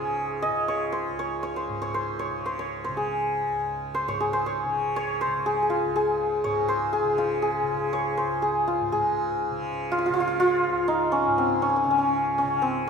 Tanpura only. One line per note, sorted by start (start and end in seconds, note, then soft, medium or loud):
0.00 1.09 C#2 medium
0.00 1.69 G#2 medium
0.00 0.50 C#3 medium
0.50 2.29 C#3 medium
1.09 3.47 C#2 medium
1.69 4.07 G#2 medium
2.29 2.89 C#3 medium
2.89 4.66 C#3 medium
3.47 5.85 C#2 medium
4.07 6.44 G#2 medium
4.66 5.27 C#3 medium
5.27 7.04 C#3 medium
5.86 8.21 C#2 medium
6.44 8.80 G#2 medium
7.04 7.63 C#3 medium
7.63 9.51 C#3 medium
8.22 10.68 C#2 medium
8.80 8.92 G#2 medium
8.92 11.27 G#2 medium
9.51 10.10 C#3 medium
10.10 11.85 C#3 medium
10.69 12.90 C#2 medium
11.27 12.90 G#2 medium
11.85 12.44 C#3 medium
12.44 12.90 C#3 medium